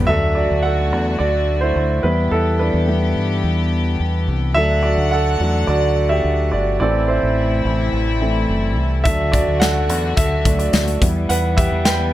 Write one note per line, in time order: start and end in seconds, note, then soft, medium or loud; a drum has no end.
0.00 0.10 G4 medium
0.07 0.47 D2 medium
0.07 2.02 D3 medium
0.07 0.45 F#3 soft
0.07 2.02 A3 medium
0.07 0.45 A3 soft
0.07 0.46 D4 medium
0.07 2.02 F#4 medium
0.07 0.35 A4 medium
0.07 0.33 E5 loud
0.35 0.43 F#4 medium
0.35 0.41 D5 medium
0.51 0.92 D2 medium
0.63 1.16 A4 medium
0.63 1.21 F#5 medium
0.92 1.18 E2 medium
1.19 1.72 D2 medium
1.19 1.59 F#4 medium
1.19 1.63 D5 medium
1.61 2.02 E4 medium
1.61 2.00 C5 medium
1.76 2.02 D2 medium
2.03 2.30 E2 medium
2.03 4.54 E3 medium
2.03 2.86 G3 medium
2.03 4.54 B3 medium
2.03 2.87 B3 soft
2.03 2.31 E4 medium
2.03 4.54 G4 medium
2.03 2.32 B4 medium
2.31 2.71 E2 medium
2.31 2.40 E4 medium
2.31 2.38 A4 medium
2.59 3.41 D4 medium
2.59 3.40 B4 medium
2.74 3.13 E2 medium
2.88 3.13 G3 soft
2.88 3.13 B3 soft
2.88 3.14 E4 soft
3.16 3.42 G2 medium
3.44 3.96 E2 medium
4.00 4.26 E2 medium
4.28 4.56 C2 medium
4.54 4.95 D2 medium
4.54 6.79 D3 medium
4.54 4.93 F#3 soft
4.54 4.94 A3 soft
4.54 10.98 A3 medium
4.54 4.94 D4 medium
4.54 4.83 A4 medium
4.54 4.84 E5 loud
4.54 6.78 F#5 medium
4.83 5.11 F#4 medium
4.83 5.13 D5 medium
4.98 5.37 D2 medium
5.11 5.65 A4 medium
5.11 5.70 F#5 medium
5.40 5.66 E2 medium
5.40 5.66 F#3 soft
5.40 5.66 A3 soft
5.40 5.66 D4 medium
5.67 6.20 D2 medium
5.67 6.08 F#4 medium
5.67 6.11 D5 medium
6.09 6.50 G4 medium
6.09 6.53 E5 medium
6.24 6.51 D2 medium
6.52 6.79 G1 medium
6.52 6.79 F#4 medium
6.52 6.78 D5 medium
6.80 7.20 A1 medium
6.80 9.03 C3 medium
6.80 8.19 E3 medium
6.80 8.20 A3 soft
6.80 8.20 C4 medium
6.80 9.03 E4 medium
6.80 7.07 A4 medium
6.80 7.09 D5 medium
7.08 7.89 E4 medium
7.08 7.89 C5 medium
7.23 7.62 A1 medium
7.65 7.91 A1 medium
7.93 8.45 A1 medium
8.21 8.46 E3 soft
8.21 8.46 A3 soft
8.21 8.47 C4 soft
8.49 8.77 F#1 medium
8.77 9.03 C2 medium
9.04 9.45 D2 medium
9.04 11.00 D3 medium
9.04 9.85 F#3 soft
9.04 9.85 A3 soft
9.04 9.86 D4 medium
9.04 11.00 F#4 medium
9.04 9.32 A4 medium
9.04 9.33 E5 medium
9.04 kick medium
9.04 closed hi-hat medium
9.32 9.60 F#4 medium
9.32 9.61 D5 medium
9.32 kick medium
9.32 closed hi-hat medium
9.47 9.89 D2 medium
9.60 10.14 A4 medium
9.60 10.18 F#5 loud
9.60 snare loud
9.60 closed hi-hat medium
9.89 10.16 E2 medium
9.89 closed hi-hat medium
10.17 10.70 D2 medium
10.17 10.57 A4 medium
10.17 10.60 E5 medium
10.17 kick medium
10.17 closed hi-hat medium
10.45 10.71 F#3 soft
10.45 10.71 A3 soft
10.45 10.71 D4 medium
10.45 kick medium
10.45 closed hi-hat medium
10.59 10.99 F#4 soft
10.59 10.98 D5 medium
10.59 closed hi-hat soft
10.73 10.99 D2 medium
10.73 snare loud
10.73 closed hi-hat medium
10.88 closed hi-hat soft
11.01 11.28 E2 medium
11.01 12.13 E3 medium
11.01 11.38 G3 soft
11.01 12.13 G3 medium
11.01 12.13 B3 medium
11.01 11.39 B3 soft
11.01 11.39 E4 medium
11.01 kick medium
11.01 closed hi-hat medium
11.29 11.69 E2 medium
11.29 11.56 B4 medium
11.29 11.58 F#5 loud
11.29 closed hi-hat medium
11.57 11.84 G4 medium
11.57 11.86 E5 medium
11.57 kick medium
11.57 closed hi-hat medium
11.72 12.11 E2 medium
11.85 12.13 B4 medium
11.85 12.13 G5 medium
11.85 snare loud
11.85 closed hi-hat medium